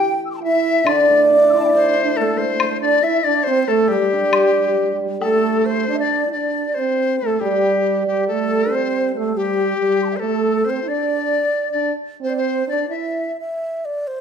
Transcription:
0.00 1.73 E3 medium
0.00 0.13 G4 medium
0.00 0.12 G5 medium
0.00 0.20 G5 medium
0.26 0.30 E6 soft
0.31 0.36 C6 soft
0.31 0.34 D6 soft
0.36 0.40 A5 soft
0.41 0.83 E4 medium
0.41 0.87 E5 medium
0.41 0.43 G5 medium
0.47 0.93 E5 medium
0.84 3.44 D3 medium
0.84 0.92 D4 medium
0.84 1.21 D5 medium
0.84 high woodblock medium
0.91 1.00 D4 medium
0.91 2.23 D5 loud
1.01 1.08 D4 medium
1.09 2.81 A3 soft
1.09 1.15 D4 medium
1.16 1.22 D4 medium
1.23 1.30 D4 medium
1.30 3.02 D4 soft
1.30 1.37 D4 medium
1.37 1.44 D4 medium
1.45 1.52 D4 medium
1.50 3.24 E4 soft
1.50 1.55 D6 soft
1.50 1.53 E6 soft
1.54 1.58 D4 medium
1.54 1.59 C6 soft
1.58 1.64 D4 medium
1.58 1.64 A5 soft
1.65 1.72 D4 medium
1.65 1.71 E5 medium
1.65 1.68 G5 soft
1.71 1.79 D4 medium
1.71 3.46 A4 soft
1.71 2.18 C5 medium
1.71 1.74 D5 medium
1.80 1.87 D4 medium
1.89 1.95 D4 medium
1.97 2.03 D4 medium
2.04 2.10 D4 medium
2.17 2.24 A3 medium
2.17 2.39 A4 medium
2.21 2.43 A4 medium
2.26 2.32 A3 medium
2.32 2.38 A3 medium
2.38 2.45 A3 medium
2.38 2.80 C5 medium
2.38 2.82 C5 medium
2.46 2.52 A3 medium
2.53 2.58 A3 medium
2.59 2.66 A3 medium
2.59 high woodblock medium
2.67 2.73 A3 medium
2.81 3.01 D4 medium
2.81 3.05 D5 medium
2.81 3.06 D5 medium
3.03 3.22 E4 medium
3.03 3.25 E5 medium
3.03 3.28 E5 medium
3.24 3.44 D4 medium
3.24 3.45 D5 medium
3.24 3.50 D5 medium
3.44 3.66 C4 medium
3.44 3.69 C5 medium
3.48 3.62 C5 loud
3.62 3.73 C5 medium
3.68 3.88 A3 medium
3.68 3.89 A4 medium
3.68 3.94 A4 medium
3.88 6.53 G3 medium
3.88 3.97 G3 medium
3.88 4.97 G4 medium
3.93 5.02 G4 medium
3.98 4.03 G3 soft
4.03 4.10 G3 medium
4.12 4.18 G3 soft
4.12 5.89 D4 medium
4.18 4.25 G3 soft
4.25 4.32 G3 soft
4.32 4.39 G3 soft
4.32 high woodblock medium
4.41 4.45 G3 soft
4.45 4.52 G3 soft
4.53 4.61 G3 soft
4.61 4.68 G3 soft
4.69 4.76 G3 soft
4.78 4.85 G3 soft
4.87 4.93 G3 soft
4.94 5.00 G3 medium
5.01 5.07 G3 soft
5.09 5.15 G3 medium
5.20 5.84 A3 medium
5.20 5.67 A4 medium
5.20 low woodblock soft
5.24 5.68 A4 medium
5.65 5.99 C5 medium
5.65 5.88 C5 medium
5.88 6.22 D4 medium
5.88 5.97 D5 medium
5.95 6.04 E5 medium
5.99 6.29 D5 medium
5.99 6.32 D5 medium
6.27 6.36 E4 soft
6.32 6.65 D4 medium
6.32 6.76 D5 medium
6.32 6.81 D5 medium
6.74 7.18 C4 medium
6.74 7.18 C5 medium
6.79 7.22 C5 medium
7.19 7.41 A3 medium
7.19 7.42 A4 medium
7.26 7.47 A4 medium
7.40 10.00 G3 medium
7.40 8.03 G3 medium
7.40 8.06 G4 medium
7.45 8.33 G4 medium
8.07 8.27 G3 medium
8.07 8.27 G4 medium
8.28 8.63 A3 medium
8.28 8.72 A4 medium
8.32 8.77 A4 medium
8.66 8.73 D4 medium
8.71 9.14 C4 medium
8.71 9.10 C5 medium
8.75 9.09 C5 medium
9.09 9.18 C5 medium
9.15 9.35 A3 medium
9.15 9.39 A4 medium
9.36 9.76 G3 medium
9.36 10.18 G4 medium
9.36 9.80 G4 medium
9.78 10.19 G3 medium
9.78 10.02 G4 medium
10.03 10.09 A5 soft
10.03 10.05 C6 soft
10.10 10.16 E5 soft
10.10 10.12 G5 soft
10.16 10.66 A4 medium
10.16 10.21 C5 soft
10.16 10.25 C5 soft
10.16 10.20 D5 soft
10.21 10.62 A3 medium
10.25 10.71 A4 medium
10.65 10.80 C4 medium
10.65 10.90 C5 medium
10.70 10.92 C5 medium
10.83 10.89 E4 soft
10.88 11.45 D4 medium
10.88 11.71 D5 medium
10.88 11.96 D5 medium
11.71 11.93 D4 medium
11.71 11.93 D5 medium
12.21 12.63 C4 medium
12.21 12.35 C5 medium
12.21 12.31 C5 medium
12.30 12.41 D5 medium
12.37 12.66 C5 medium
12.37 12.74 C5 medium
12.67 12.87 D4 medium
12.67 12.89 D5 medium
12.73 12.95 D5 medium
12.88 13.31 E4 medium
12.88 13.32 E5 medium
12.94 13.37 E5 medium
13.40 13.87 E5 medium
13.85 14.09 D5 medium
14.07 14.21 C5 medium

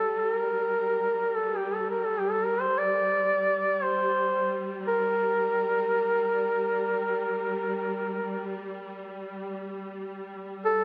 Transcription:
0.00 10.84 G3 soft
0.00 0.19 A4 medium
0.19 0.32 A4 medium
0.32 1.38 A#4 medium
1.37 1.58 A4 medium
1.57 1.76 G4 medium
1.74 1.89 A4 medium
1.90 2.08 A#4 medium
2.06 2.21 A4 medium
2.19 2.33 G4 medium
2.31 2.47 A4 medium
2.45 2.62 A#4 medium
2.61 2.80 C5 medium
2.78 3.85 D5 medium
3.83 4.56 C5 medium
4.87 8.70 A#4 medium
10.66 10.84 A4 medium

